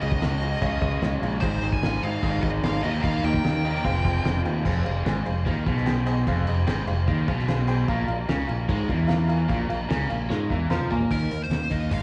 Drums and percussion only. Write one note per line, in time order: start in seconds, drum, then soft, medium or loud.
0.02 crash medium
0.12 kick medium
0.22 snare loud
0.22 crash medium
0.42 crash medium
0.62 kick loud
0.62 crash medium
0.82 kick loud
0.82 crash medium
1.02 snare loud
1.02 crash medium
1.23 crash medium
1.42 kick loud
1.42 crash medium
1.63 crash medium
1.73 kick medium
1.83 snare loud
1.83 crash medium
2.03 crash medium
2.23 kick loud
2.23 crash medium
2.42 kick loud
2.42 crash medium
2.63 snare loud
2.63 crash medium
2.84 crash medium
3.04 kick loud
3.04 crash medium
3.24 crash medium
3.34 kick medium
3.44 snare loud
3.44 crash medium
3.65 crash medium
3.75 snare soft
3.85 kick loud
3.85 crash medium
4.05 kick loud
4.05 crash medium
4.25 snare loud
4.25 crash medium
4.45 crash medium
4.65 kick medium
4.65 crash loud
4.65 crash medium
4.86 crash medium
5.06 snare loud
5.06 crash medium
5.26 crash medium
5.46 kick medium
5.46 crash medium
5.66 kick loud
5.66 crash medium
5.77 snare soft
5.87 snare loud
5.87 crash medium
6.07 crash medium
6.27 kick loud
6.27 crash medium
6.47 crash medium
6.67 snare loud
6.67 crash medium
6.87 crash medium
7.08 kick loud
7.08 crash medium
7.28 kick loud
7.28 crash medium
7.39 snare soft
7.48 snare loud
7.48 crash medium
7.69 crash medium
7.88 kick loud
7.88 crash medium
8.08 crash medium
8.29 snare loud
8.29 crash medium
8.49 crash medium
8.69 kick medium
8.69 crash medium
8.89 kick loud
8.89 crash medium
9.09 snare loud
9.09 crash medium
9.29 crash medium
9.49 kick loud
9.49 crash medium
9.70 crash medium
9.90 snare loud
9.90 crash medium
10.10 crash medium
10.30 snare medium
10.50 kick medium
10.71 snare medium
10.81 mid tom medium
10.91 floor tom medium
11.01 floor tom medium
11.11 kick medium
11.11 open hi-hat medium
11.31 open hi-hat soft
11.51 snare loud
11.51 open hi-hat medium
11.71 kick medium
11.71 open hi-hat soft
11.91 kick medium
11.91 open hi-hat medium